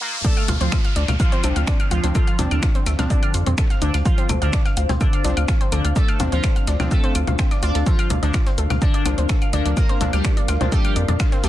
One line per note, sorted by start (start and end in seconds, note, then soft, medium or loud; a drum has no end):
0.00 0.16 A#2 medium
0.00 0.16 A#3 medium
0.00 riser medium
0.25 0.46 A3 medium
0.25 0.35 D4 medium
0.25 11.49 D4 medium
0.25 0.46 A4 loud
0.25 7.82 C5 medium
0.25 0.35 D5 medium
0.25 11.49 F5 medium
0.25 kick loud
0.25 closed hi-hat medium
0.25 downlifter medium
0.25 shaker medium
0.37 0.43 F5 medium
0.37 0.43 F6 medium
0.37 closed hi-hat soft
0.37 claves medium
0.48 0.58 D2 medium
0.48 0.55 F4 medium
0.48 0.55 F5 medium
0.48 closed hi-hat loud
0.48 low conga medium
0.48 shaker medium
0.61 0.69 D2 medium
0.61 0.75 F3 medium
0.61 0.67 C4 medium
0.61 0.75 F4 medium
0.61 0.67 C5 medium
0.61 closed hi-hat soft
0.72 0.79 A3 medium
0.72 0.79 A4 medium
0.72 finger snap loud
0.72 kick loud
0.72 snare loud
0.72 closed hi-hat medium
0.72 claves medium
0.72 shaker medium
0.85 0.94 F5 medium
0.85 0.94 F6 medium
0.85 closed hi-hat soft
0.96 1.05 D2 loud
0.96 1.06 D4 medium
0.96 1.06 D5 medium
0.96 closed hi-hat loud
0.96 shaker medium
1.08 1.17 D2 medium
1.08 1.15 F5 medium
1.08 1.15 F6 medium
1.08 closed hi-hat soft
1.08 low conga medium
1.08 claves medium
1.20 1.42 F3 medium
1.20 1.27 F4 medium
1.20 1.42 F4 medium
1.20 1.27 F5 medium
1.20 kick loud
1.20 closed hi-hat medium
1.20 shaker medium
1.32 1.39 C4 medium
1.32 1.39 C5 medium
1.32 closed hi-hat soft
1.44 1.53 C2 medium
1.44 2.01 F3 medium
1.44 1.51 A3 medium
1.44 2.01 C4 medium
1.44 2.01 D4 medium
1.44 1.51 A4 soft
1.44 closed hi-hat loud
1.44 claves soft
1.44 shaker medium
1.56 1.65 D2 medium
1.56 1.66 F5 medium
1.56 1.66 F6 medium
1.56 closed hi-hat soft
1.67 1.78 D4 medium
1.67 1.78 D5 medium
1.67 finger snap loud
1.67 kick loud
1.67 snare loud
1.67 closed hi-hat medium
1.67 shaker medium
1.80 1.86 F5 medium
1.80 1.86 F6 medium
1.80 closed hi-hat soft
1.80 claves medium
1.91 2.00 D2 medium
1.91 2.06 F3 medium
1.91 1.98 F4 medium
1.91 2.06 F4 medium
1.91 1.98 F5 medium
1.91 closed hi-hat loud
1.91 shaker medium
2.04 2.12 D2 medium
2.04 2.13 F3 medium
2.04 2.10 C4 medium
2.04 2.13 C4 medium
2.04 2.13 D4 medium
2.04 2.10 C5 soft
2.04 closed hi-hat soft
2.15 2.37 F3 medium
2.15 2.22 A3 medium
2.15 2.37 F4 loud
2.15 2.22 A4 medium
2.15 kick loud
2.15 closed hi-hat medium
2.15 claves medium
2.15 shaker medium
2.27 2.37 F5 medium
2.27 2.37 F6 medium
2.27 closed hi-hat soft
2.39 2.48 D#2 medium
2.39 2.96 F3 medium
2.39 2.96 C4 medium
2.39 2.49 D4 medium
2.39 2.96 D4 loud
2.39 2.49 D5 medium
2.39 closed hi-hat loud
2.39 low conga medium
2.39 shaker medium
2.51 2.60 D#2 medium
2.51 2.65 D3 medium
2.51 2.65 D4 medium
2.51 2.58 F5 medium
2.51 2.58 F6 medium
2.51 closed hi-hat soft
2.51 claves medium
2.63 2.70 F4 medium
2.63 2.70 F5 medium
2.63 finger snap loud
2.63 kick loud
2.63 snare loud
2.63 closed hi-hat medium
2.63 shaker medium
2.75 2.81 C4 medium
2.75 2.81 C5 medium
2.75 closed hi-hat soft
2.86 2.96 D2 medium
2.86 2.93 A3 medium
2.86 2.93 A4 medium
2.86 snare medium
2.86 closed hi-hat loud
2.86 claves medium
2.86 shaker medium
2.99 3.07 D2 medium
2.99 5.22 F3 loud
2.99 5.22 C4 medium
2.99 5.22 D4 loud
2.99 3.08 F5 medium
2.99 3.08 F6 medium
2.99 snare soft
2.99 closed hi-hat soft
2.99 low conga medium
3.10 3.32 D3 medium
3.10 3.21 D4 medium
3.10 3.32 D4 medium
3.10 3.21 D5 medium
3.10 kick loud
3.10 closed hi-hat medium
3.10 shaker medium
3.23 3.29 F5 medium
3.23 3.29 F6 medium
3.23 closed hi-hat soft
3.23 claves medium
3.34 3.43 F2 medium
3.34 3.41 F4 medium
3.34 3.41 F5 medium
3.34 closed hi-hat loud
3.34 shaker medium
3.46 3.55 F2 medium
3.46 3.53 C4 medium
3.46 3.53 C5 medium
3.46 closed hi-hat soft
3.46 low conga medium
3.58 3.65 A3 medium
3.58 3.65 A4 medium
3.58 finger snap loud
3.58 kick loud
3.58 snare loud
3.58 closed hi-hat medium
3.58 claves medium
3.58 shaker medium
3.70 3.80 F5 medium
3.70 3.80 F6 medium
3.70 snare medium
3.70 closed hi-hat soft
3.82 3.91 D2 loud
3.82 3.97 D3 medium
3.82 3.96 D4 loud
3.82 3.92 D4 medium
3.82 3.92 D5 medium
3.82 closed hi-hat loud
3.82 shaker medium
3.94 4.03 D2 medium
3.94 4.00 F5 medium
3.94 4.00 F6 medium
3.94 closed hi-hat soft
3.94 closed hi-hat medium
3.94 claves medium
4.05 4.27 F3 medium
4.05 4.12 F4 medium
4.05 4.27 F4 loud
4.05 4.12 F5 medium
4.05 kick loud
4.05 closed hi-hat medium
4.05 shaker medium
4.18 4.24 C4 medium
4.18 4.24 C5 medium
4.18 closed hi-hat soft
4.29 4.39 D2 loud
4.29 4.36 A3 medium
4.29 4.36 A4 medium
4.29 closed hi-hat loud
4.29 low conga medium
4.29 claves medium
4.29 shaker medium
4.42 4.50 D2 medium
4.42 4.56 D3 medium
4.42 4.56 D4 medium
4.42 4.51 F5 medium
4.42 4.51 F6 medium
4.42 closed hi-hat soft
4.53 4.64 D4 medium
4.53 4.64 D5 medium
4.53 finger snap loud
4.53 kick loud
4.53 snare loud
4.53 closed hi-hat medium
4.53 shaker medium
4.65 4.72 F5 medium
4.65 4.72 F6 medium
4.65 closed hi-hat soft
4.65 claves medium
4.77 4.86 D2 medium
4.77 4.84 F4 medium
4.77 4.84 F5 medium
4.77 closed hi-hat loud
4.77 shaker medium
4.89 4.98 D2 medium
4.89 4.96 C4 medium
4.89 4.96 C5 medium
4.89 closed hi-hat soft
4.89 low conga medium
5.01 5.22 D3 medium
5.01 5.08 A3 medium
5.01 5.22 D4 medium
5.01 5.08 A4 medium
5.01 kick loud
5.01 closed hi-hat medium
5.01 claves medium
5.01 shaker medium
5.13 5.23 F5 medium
5.13 5.23 F6 medium
5.13 closed hi-hat soft
5.25 5.34 C2 medium
5.25 5.82 F3 medium
5.25 5.82 C4 medium
5.25 5.82 D4 loud
5.25 5.35 D4 medium
5.25 5.35 D5 soft
5.25 closed hi-hat loud
5.25 shaker medium
5.37 5.45 D2 medium
5.37 5.43 F5 medium
5.37 5.43 F6 medium
5.37 closed hi-hat soft
5.37 claves medium
5.48 5.55 F4 medium
5.48 5.55 F5 medium
5.48 finger snap loud
5.48 kick loud
5.48 snare loud
5.48 closed hi-hat medium
5.48 shaker medium
5.61 5.67 C4 medium
5.61 5.67 C5 medium
5.61 closed hi-hat soft
5.72 5.81 D2 medium
5.72 5.87 D3 medium
5.72 5.79 A3 medium
5.72 5.87 D4 loud
5.72 5.79 A4 medium
5.72 closed hi-hat loud
5.72 claves medium
5.72 shaker medium
5.85 5.93 D2 medium
5.85 5.94 F5 medium
5.85 5.94 F6 medium
5.85 closed hi-hat soft
5.96 6.18 A3 medium
5.96 6.06 D4 medium
5.96 6.18 A4 loud
5.96 6.06 D5 medium
5.96 kick loud
5.96 closed hi-hat medium
5.96 shaker medium
6.08 6.15 F5 medium
6.08 6.15 F6 medium
6.08 closed hi-hat soft
6.08 claves medium
6.20 6.29 D#2 medium
6.20 6.77 F3 medium
6.20 6.77 C4 medium
6.20 6.77 D4 loud
6.20 6.27 F4 medium
6.20 6.27 F5 medium
6.20 closed hi-hat loud
6.20 low conga loud
6.20 shaker medium
6.32 6.41 D#2 medium
6.32 6.46 F3 medium
6.32 6.39 C4 medium
6.32 6.46 F4 medium
6.32 6.39 C5 medium
6.32 closed hi-hat soft
6.44 6.51 A3 medium
6.44 6.51 A4 medium
6.44 finger snap loud
6.44 kick loud
6.44 snare loud
6.44 closed hi-hat medium
6.44 claves medium
6.44 shaker medium
6.56 6.66 F5 medium
6.56 6.66 F6 medium
6.56 closed hi-hat soft
6.67 6.77 D2 medium
6.67 6.78 D4 medium
6.67 6.78 D5 medium
6.67 snare medium
6.67 closed hi-hat loud
6.67 shaker medium
6.80 6.88 D2 medium
6.80 7.85 F3 loud
6.80 7.85 C4 medium
6.80 7.85 D4 loud
6.80 6.86 F5 medium
6.80 6.86 F6 medium
6.80 snare soft
6.80 closed hi-hat soft
6.80 low conga medium
6.80 claves medium
6.91 7.13 A3 medium
6.91 6.98 F4 medium
6.91 7.13 A4 medium
6.91 6.98 F5 medium
6.91 kick loud
6.91 closed hi-hat medium
6.91 shaker medium
7.04 7.10 C4 medium
7.04 7.10 C5 medium
7.04 closed hi-hat soft
7.15 7.24 D2 medium
7.15 7.19 F4 medium
7.15 7.19 F5 medium
7.15 closed hi-hat loud
7.15 claves medium
7.15 shaker medium
7.27 7.36 D2 medium
7.27 7.34 F4 medium
7.27 7.34 F5 medium
7.27 closed hi-hat soft
7.27 low conga medium
7.39 7.43 C4 loud
7.39 7.43 C5 medium
7.39 finger snap loud
7.39 kick loud
7.39 snare loud
7.39 closed hi-hat medium
7.39 shaker medium
7.51 7.58 D4 medium
7.51 7.58 D5 medium
7.51 snare medium
7.51 closed hi-hat soft
7.51 claves medium
7.63 7.72 D2 medium
7.63 7.77 D4 medium
7.63 7.67 F4 loud
7.63 7.77 D5 loud
7.63 7.67 F5 medium
7.63 closed hi-hat loud
7.63 shaker medium
7.75 7.84 D2 medium
7.75 7.85 A4 medium
7.75 7.85 A5 soft
7.75 closed hi-hat soft
7.75 closed hi-hat medium
7.86 8.08 F3 medium
7.86 7.93 A3 medium
7.86 8.08 F4 loud
7.86 7.93 A4 medium
7.86 11.49 A#4 medium
7.86 kick loud
7.86 closed hi-hat medium
7.86 shaker medium
7.99 8.08 F5 medium
7.99 8.08 F6 medium
7.99 closed hi-hat soft
7.99 claves medium
8.10 8.20 D2 medium
8.10 8.21 D4 medium
8.10 8.21 D5 medium
8.10 closed hi-hat loud
8.10 low conga loud
8.10 shaker medium
8.23 8.31 D2 medium
8.23 8.37 D3 medium
8.23 8.37 D4 medium
8.23 8.29 D4 medium
8.23 8.29 D5 medium
8.23 closed hi-hat soft
8.34 8.41 F4 medium
8.34 8.41 F5 medium
8.34 finger snap loud
8.34 kick loud
8.34 snare loud
8.34 closed hi-hat medium
8.34 claves medium
8.34 shaker medium
8.46 8.53 C4 medium
8.46 8.53 C5 medium
8.46 closed hi-hat soft
8.58 8.67 D2 loud
8.58 8.65 A3 medium
8.58 8.65 A4 medium
8.58 closed hi-hat loud
8.58 shaker medium
8.70 8.79 D2 medium
8.70 8.80 F5 medium
8.70 8.80 F6 medium
8.70 closed hi-hat soft
8.70 low conga medium
8.70 claves medium
8.82 9.03 D3 medium
8.82 8.92 D4 medium
8.82 9.03 D4 medium
8.82 8.92 D5 medium
8.82 kick loud
8.82 closed hi-hat medium
8.82 shaker medium
8.94 9.00 D4 medium
8.94 9.00 D5 medium
8.94 closed hi-hat soft
9.05 9.15 C2 loud
9.05 9.63 F3 medium
9.05 9.63 A#3 medium
9.05 9.63 D4 medium
9.05 9.12 F4 medium
9.05 9.12 F5 medium
9.05 closed hi-hat loud
9.05 claves medium
9.05 shaker medium
9.18 9.26 D2 medium
9.18 9.24 C4 medium
9.18 9.24 C5 medium
9.18 closed hi-hat soft
9.29 9.36 A3 medium
9.29 9.36 A4 medium
9.29 finger snap loud
9.29 kick loud
9.29 snare loud
9.29 closed hi-hat medium
9.29 shaker medium
9.42 9.51 F5 medium
9.42 9.51 F6 medium
9.42 closed hi-hat soft
9.42 claves medium
9.53 9.62 D2 medium
9.53 9.68 D3 medium
9.53 9.68 D4 medium
9.53 9.64 D4 medium
9.53 9.64 D5 medium
9.53 closed hi-hat loud
9.53 shaker medium
9.65 9.74 D2 medium
9.65 9.75 F3 medium
9.65 9.75 A#3 medium
9.65 9.75 D4 medium
9.65 9.72 D4 medium
9.65 9.72 D5 medium
9.65 closed hi-hat soft
9.77 9.99 A#3 medium
9.77 9.84 F4 medium
9.77 9.99 A#4 loud
9.77 9.84 F5 medium
9.77 kick loud
9.77 closed hi-hat medium
9.77 claves medium
9.77 shaker medium
9.89 9.96 C4 medium
9.89 9.96 C5 medium
9.89 closed hi-hat soft
10.01 10.10 D2 medium
10.01 10.58 F3 medium
10.01 10.08 A3 medium
10.01 10.58 A#3 medium
10.01 10.58 D4 loud
10.01 10.08 A4 medium
10.01 closed hi-hat loud
10.01 low conga medium
10.01 shaker medium
10.13 10.22 D2 medium
10.13 10.27 G3 medium
10.13 10.27 G4 medium
10.13 10.23 F5 medium
10.13 10.23 F6 medium
10.13 closed hi-hat soft
10.13 claves medium
10.25 10.35 D4 medium
10.25 10.35 D5 medium
10.25 finger snap loud
10.25 kick loud
10.25 snare loud
10.25 closed hi-hat medium
10.25 shaker medium
10.37 10.43 D4 medium
10.37 10.43 D5 medium
10.37 closed hi-hat soft
10.48 10.58 D2 medium
10.48 10.55 F4 medium
10.48 10.55 F5 medium
10.48 snare medium
10.48 closed hi-hat loud
10.48 claves medium
10.48 shaker medium
10.61 10.69 D2 medium
10.61 11.49 F3 medium
10.61 11.49 A#3 medium
10.61 10.67 C4 medium
10.61 11.49 D4 loud
10.61 10.67 C5 medium
10.61 snare soft
10.61 closed hi-hat soft
10.61 low conga medium
10.72 10.94 G3 medium
10.72 10.79 A3 medium
10.72 10.94 G4 loud
10.72 10.79 A4 medium
10.72 kick loud
10.72 closed hi-hat medium
10.72 shaker medium
10.85 10.94 F5 medium
10.85 10.94 F6 medium
10.85 closed hi-hat soft
10.85 claves medium
10.96 11.05 F2 loud
10.96 11.06 D4 medium
10.96 11.06 D5 medium
10.96 closed hi-hat loud
10.96 shaker medium
11.08 11.17 F2 medium
11.08 11.15 D4 medium
11.08 11.15 D5 medium
11.08 closed hi-hat soft
11.08 low conga medium
11.20 11.27 F4 medium
11.20 11.27 F5 medium
11.20 finger snap loud
11.20 kick loud
11.20 snare loud
11.20 closed hi-hat medium
11.20 claves medium
11.20 shaker medium
11.32 11.39 C4 medium
11.32 11.39 C5 medium
11.32 snare soft
11.32 closed hi-hat soft
11.44 11.49 D2 medium
11.44 11.49 G3 medium
11.44 11.49 A3 medium
11.44 11.49 G4 medium
11.44 11.49 A4 medium
11.44 closed hi-hat loud
11.44 shaker medium